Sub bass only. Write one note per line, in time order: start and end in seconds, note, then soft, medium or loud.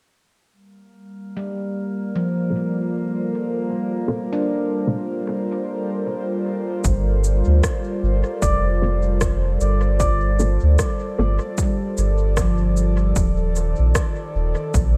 6.84 7.43 G1 loud
7.47 7.61 D2 medium
8.03 8.23 G1 medium
8.42 9.58 F1 medium
9.61 10.59 G1 medium
10.63 10.77 D2 medium
11.18 11.39 G1 medium
11.98 13.13 G1 medium
13.16 13.74 D#1 medium
13.79 13.93 A#1 medium
14.35 14.55 D#1 medium
14.74 14.97 A#1 medium